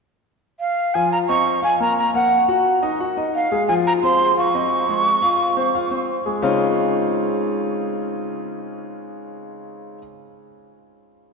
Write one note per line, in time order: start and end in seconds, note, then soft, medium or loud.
0.60 0.96 F5 medium
0.94 1.23 F3 medium
0.94 1.23 F4 medium
0.94 1.11 G#5 medium
1.12 1.18 A#5 medium
1.29 1.57 C4 medium
1.29 1.57 D#5 medium
1.29 1.60 C#6 loud
1.62 1.76 F4 medium
1.62 1.76 F5 medium
1.62 1.79 G#5 medium
1.80 2.08 A#3 medium
1.80 2.08 A#4 medium
1.80 1.96 A#5 medium
1.98 2.14 A#5 medium
2.14 2.42 A#3 medium
2.14 2.42 A#4 medium
2.14 2.46 F#5 medium
2.48 2.76 F#4 medium
2.48 2.77 F#5 medium
2.83 2.97 D#4 medium
2.83 2.97 D#5 medium
3.00 3.14 F#4 medium
3.00 3.14 F#5 medium
3.17 3.45 D#4 medium
3.17 3.45 D#5 medium
3.35 3.66 F5 medium
3.52 3.65 G#3 medium
3.52 3.65 G#4 medium
3.68 3.97 F3 medium
3.68 3.97 F4 medium
3.68 3.74 G#5 medium
3.87 3.93 A#5 medium
4.03 4.31 C4 medium
4.03 4.31 C5 medium
4.03 4.35 C6 loud
4.37 4.51 F4 medium
4.37 4.51 F5 medium
4.37 6.05 C#6 medium
4.55 4.82 C4 medium
4.55 4.82 D#5 medium
4.89 5.17 G#3 medium
4.89 5.17 G#4 medium
5.22 5.50 F4 medium
5.22 5.50 F5 medium
5.57 5.71 C4 medium
5.57 5.71 C5 medium
5.75 5.88 F4 medium
5.75 5.88 F5 medium
5.91 6.19 C4 medium
5.91 6.19 C5 medium
6.26 6.39 G#3 medium
6.26 6.40 G#4 medium
6.42 9.97 C#3 medium
6.42 9.97 G#3 medium
6.42 9.97 C4 medium
6.42 9.97 C#4 medium
6.42 9.97 D#4 medium
6.42 9.98 F4 medium